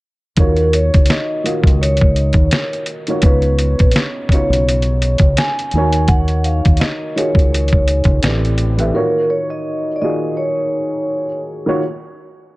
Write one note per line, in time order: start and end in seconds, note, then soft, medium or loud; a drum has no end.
0.37 0.89 D#2 loud
0.37 1.30 D#3 medium
0.37 1.31 A#3 medium
0.37 1.31 F4 medium
0.37 1.31 F#4 medium
0.37 0.75 A#4 medium
0.37 1.32 C#5 medium
0.37 kick loud
0.37 closed hi-hat medium
0.57 closed hi-hat soft
0.73 1.10 C#5 medium
0.73 closed hi-hat medium
0.94 1.08 C#2 medium
0.94 kick medium
0.94 closed hi-hat soft
1.06 closed hi-hat medium
1.10 1.83 D#5 loud
1.10 snare medium
1.44 2.67 D#3 medium
1.44 2.68 A#3 medium
1.44 2.68 F4 medium
1.44 2.68 F#4 medium
1.44 2.68 D#5 medium
1.44 closed hi-hat medium
1.64 2.32 C#2 medium
1.64 kick medium
1.64 closed hi-hat soft
1.82 2.84 C#5 medium
1.82 closed hi-hat medium
1.97 closed hi-hat soft
2.01 kick medium
2.16 closed hi-hat medium
2.33 2.49 D#2 medium
2.33 kick medium
2.33 closed hi-hat soft
2.51 snare loud
2.51 closed hi-hat medium
2.73 closed hi-hat soft
2.86 closed hi-hat medium
3.07 3.21 D#3 medium
3.07 3.21 A#3 medium
3.07 3.21 F4 medium
3.07 3.22 F#4 medium
3.07 3.22 C#5 medium
3.07 closed hi-hat soft
3.22 3.75 C#2 loud
3.22 4.16 C#3 medium
3.22 4.16 B3 medium
3.22 4.17 D#4 medium
3.22 4.17 F4 medium
3.22 3.91 B4 loud
3.22 4.17 C#5 medium
3.22 kick loud
3.22 closed hi-hat medium
3.42 closed hi-hat soft
3.59 closed hi-hat medium
3.79 3.94 A#1 medium
3.79 kick medium
3.79 closed hi-hat soft
3.91 closed hi-hat medium
3.96 snare loud
4.29 5.54 C#3 medium
4.29 5.54 B3 medium
4.29 5.41 C#5 medium
4.29 kick medium
4.29 closed hi-hat medium
4.33 5.55 D#4 medium
4.33 5.55 F4 medium
4.33 5.55 C#5 medium
4.50 5.18 B1 medium
4.50 closed hi-hat soft
4.69 closed hi-hat medium
4.82 closed hi-hat soft
5.02 closed hi-hat medium
5.18 5.35 C#2 medium
5.18 kick medium
5.18 closed hi-hat soft
5.37 6.11 G#5 medium
5.37 snare loud
5.37 closed hi-hat medium
5.59 closed hi-hat soft
5.71 6.61 D#2 medium
5.71 6.97 D#3 medium
5.71 closed hi-hat medium
5.76 6.97 A#3 medium
5.76 6.98 D#4 medium
5.76 6.98 F#4 medium
5.76 6.98 C#5 medium
5.93 closed hi-hat soft
6.08 6.45 F#5 medium
6.08 kick loud
6.08 closed hi-hat medium
6.28 closed hi-hat soft
6.44 6.81 F5 medium
6.44 closed hi-hat medium
6.65 6.80 D#2 medium
6.65 kick medium
6.65 closed hi-hat soft
6.77 7.08 D#5 medium
6.77 closed hi-hat medium
6.81 snare loud
7.10 7.16 D#5 medium
7.16 8.23 D#3 medium
7.16 8.23 A#3 medium
7.16 8.24 F4 medium
7.16 8.24 F#4 medium
7.16 8.24 G#4 medium
7.16 7.52 C#5 medium
7.16 closed hi-hat medium
7.35 8.03 C#2 medium
7.35 kick medium
7.39 closed hi-hat soft
7.53 8.20 C#5 medium
7.53 closed hi-hat medium
7.68 closed hi-hat soft
7.73 kick medium
7.88 closed hi-hat medium
8.04 8.21 C#2 medium
8.04 kick medium
8.04 closed hi-hat soft
8.23 8.91 A1 medium
8.23 8.70 A2 medium
8.23 8.70 E3 medium
8.23 8.70 C4 medium
8.23 8.70 G4 medium
8.23 8.71 B4 medium
8.23 8.71 D5 medium
8.23 snare loud
8.23 closed hi-hat medium
8.45 closed hi-hat soft
8.58 closed hi-hat medium
8.77 8.91 A2 medium
8.77 8.92 E3 medium
8.77 8.92 C4 medium
8.77 8.92 G4 medium
8.77 8.93 B4 medium
8.77 8.93 E5 medium
8.77 closed hi-hat soft
8.94 9.87 D#3 medium
8.94 9.87 A#3 medium
8.94 9.88 F4 medium
8.94 9.88 F#4 medium
8.94 9.31 A#4 medium
8.94 9.88 C#5 medium
9.30 9.39 C#5 medium
9.50 9.97 D#5 loud
9.96 10.02 D5 medium
10.02 11.25 D#3 medium
10.02 11.25 A#3 medium
10.02 11.25 F4 medium
10.02 11.25 F#4 medium
10.02 11.26 G#4 medium
10.02 10.38 D#5 medium
10.37 11.40 C#5 medium
11.66 11.79 D#3 medium
11.66 11.79 A#3 medium
11.66 11.79 F4 medium
11.66 11.80 F#4 medium
11.66 11.80 C#5 medium